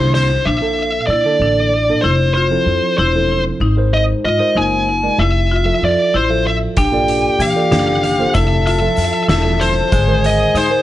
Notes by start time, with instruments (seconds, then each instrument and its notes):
Already playing: tine electric piano C3 A#3 D4 E4, marimba E4, lead electric guitar C5
0.00 upright bass C2
0.14 lead electric guitar C5, snare, closed hi-hat
0.45 upright bass A#1, marimba D4, lead electric guitar E5
0.61 tine electric piano A#2 A#3 D4 A4
1.07 upright bass A#2, marimba E4, lead electric guitar D5
1.25 tine electric piano D3 A#3 D4 A4
1.40 upright bass A1, marimba D4
1.88 tine electric piano A#2 A#3 D4 A4
2.01 upright bass F1, marimba E4, lead electric guitar C5
2.34 marimba F4, lead electric guitar C5
2.50 tine electric piano F3 C4 E4 A4
2.66 upright bass F2
2.98 upright bass E1, marimba E4, lead electric guitar C5
3.14 tine electric piano F3 C4 E4 A4
3.60 upright bass G#1, marimba D#4
3.77 tine electric piano G#3 D#4 A#4 C5
3.94 lead electric guitar D#5
4.24 upright bass G#2, marimba F4, lead electric guitar D#5
4.39 tine electric piano G#3 D#4 A#4 C5
4.55 upright bass F#1, marimba D#4, lead electric guitar G#5
5.02 tine electric piano G#3 D#4 A#4 D5
5.18 upright bass F1, marimba E4, lead electric guitar E5
5.52 marimba F4
5.65 tine electric piano F3 F4 A4 E5
5.82 upright bass F2, lead electric guitar D5
6.14 upright bass A1, marimba E4, lead electric guitar C5
6.29 tine electric piano F3 F4 A4 E5
6.47 lead electric guitar E5
6.76 upright bass A#1, marimba D4, flugelhorn G4, lead electric guitar G5, kick, closed hi-hat, shaker
6.92 tine electric piano A#3 F4 A4 D5
7.08 closed hi-hat
7.39 upright bass A#2, marimba E3, lead electric guitar F5, closed hi-hat, shaker
7.55 tine electric piano A#3 F4 A4 D5
7.71 upright bass F#1, marimba D4, snare, closed hi-hat
8.03 closed hi-hat
8.19 tine electric piano A#3 F4 A4 C5
8.34 upright bass F1, marimba E4, flugelhorn A4, lead electric guitar E5, kick, closed hi-hat, shaker
8.66 marimba F4, lead electric guitar E5, closed hi-hat
8.81 tine electric piano F3 F4 A4 E5
8.97 upright bass F2, closed hi-hat, shaker
9.28 upright bass E1, marimba E4, lead electric guitar E5, snare, closed hi-hat
9.44 tine electric piano F3 F4 A4 E5
9.61 lead electric guitar C5, closed hi-hat
9.92 upright bass G#1, marimba D3, flugelhorn G#4, kick, closed hi-hat, shaker
10.07 tine electric piano D#3 G#3 A#4 C5
10.24 lead electric guitar D#5, closed hi-hat
10.54 upright bass G#2, marimba D#4, lead electric guitar C5, closed hi-hat, shaker
10.70 tine electric piano D#4 G#4 A#4 C5